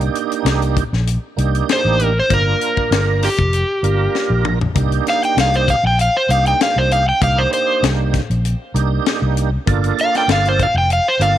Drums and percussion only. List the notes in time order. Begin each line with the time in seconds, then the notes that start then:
0.01 closed hi-hat
0.15 closed hi-hat
0.32 closed hi-hat
0.46 snare, closed hi-hat
0.62 closed hi-hat
0.77 kick, closed hi-hat
0.93 snare
1.07 closed hi-hat
1.38 closed hi-hat
1.55 closed hi-hat
1.69 snare, closed hi-hat
2.00 closed hi-hat
2.30 kick, closed hi-hat
2.61 closed hi-hat
2.77 kick
2.92 snare, closed hi-hat
3.22 snare, open hi-hat
3.39 kick, closed hi-hat
3.53 closed hi-hat
3.84 closed hi-hat
4.15 snare
4.45 mid tom
4.61 floor tom
4.76 kick, closed hi-hat
4.92 closed hi-hat
5.07 snare, closed hi-hat
5.23 closed hi-hat
5.38 snare, closed hi-hat
5.54 closed hi-hat
5.68 kick, closed hi-hat
5.99 closed hi-hat
6.30 closed hi-hat
6.46 closed hi-hat
6.61 snare, closed hi-hat
6.91 closed hi-hat
7.22 kick, closed hi-hat
7.53 closed hi-hat
7.83 snare, closed hi-hat
8.14 kick, snare, closed hi-hat
8.31 closed hi-hat
8.45 closed hi-hat
8.76 closed hi-hat
9.06 snare, closed hi-hat
9.37 closed hi-hat
9.67 kick, closed hi-hat
9.84 closed hi-hat
9.98 closed hi-hat
10.15 snare, closed hi-hat
10.29 snare, closed hi-hat
10.45 closed hi-hat
10.60 kick, closed hi-hat
10.90 closed hi-hat
11.21 closed hi-hat